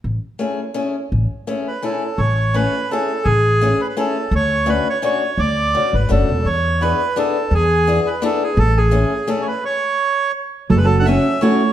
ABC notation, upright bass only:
X:1
M:3/4
L:1/8
Q:"Swing" 1/4=169
K:A
V:1 name="Upright bass" clef=bass
A,,, z4 z | A,,, z4 z | A,,,4 z2 | A,,,4 z2 |
D,,4 z2 | D,,3 G,,, F,,, E,,, | E,,4 z2 | E,,4 z2 |
A,,,4 z2 | z6 | [K:F#m] F,,,4 z2 |]